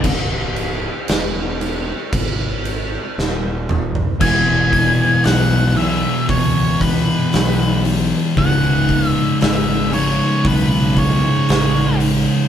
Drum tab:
CC |x-x-x-x-x-x-----|x---------------|----------------|
HH |----------------|--o-o-o-o-o-o-o-|o-o-o-o-o-o-o-o-|
SD |----o-------o---|----o-------o---|----o-------o---|
T2 |--------------o-|----------------|----------------|
FT |---------------o|----------------|----------------|
BD |o-------o-------|o-o-----o-o-----|o-o-----o-o-----|